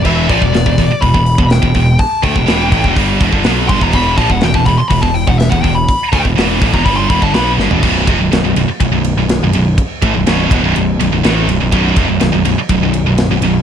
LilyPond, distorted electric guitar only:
\new Staff \with { instrumentName = "Distorted electric guitar" } { \clef bass \time 4/4 \key b \minor \tempo 4 = 123 <e, b, e>8 <ais, eis>16 <e, b,>16 <e, b,>16 <e, b,>16 <e, b,>16 r16 <e, b,>16 <e, b,>8 <e, b,>8 <e, b,>16 <e, b,>8 | r8 <d a>16 <e, b,>16 <e, b, e>8 <a, e>16 <e, b,>16 <g, d g>8 <e, b,>16 <g, d>16 <b, fis b>8 <g, d>16 <e, b,>16 | <e, b, e>8 <ais, eis>16 <e, b,>16 <e, b,>16 <e, b,>16 <e, b,>16 r16 <e, b,>16 <e, b,>8 <e, b,>8 <e, b,>16 <e, b,>8 | r8 <d a>16 <e, b,>16 <e, b, e>8 <a, e>16 <e, b,>16 <g, d g>8 <e, b,>16 <g, d>16 <b, fis b>8 <g, d>16 <e, b,>16 |
<b,, fis, b,>8 <eis, c>16 <b,, fis,>16 <b,, fis,>16 <b,, fis,>16 <b,, fis,>16 r16 <b,, fis,>16 <b,, fis,>8 <b,, fis,>8 <b,, fis,>16 <b,, fis,>8 | r8 <a, e>16 <b,, fis,>16 <b,, fis, b,>8 <e, b,>16 <b,, fis,>16 <b,, fis,>8 <b,, fis,>16 <b,, fis,>16 <a, e a>8 <b,, fis,>16 <b,, fis,>16 | <b,, fis, b,>8 <eis, c>16 <b,, fis,>16 <b,, fis,>16 <b,, fis,>16 <b,, fis,>16 r16 <b,, fis,>16 <b,, fis,>8 <b,, fis,>8 <b,, fis,>16 <b,, fis,>8 | }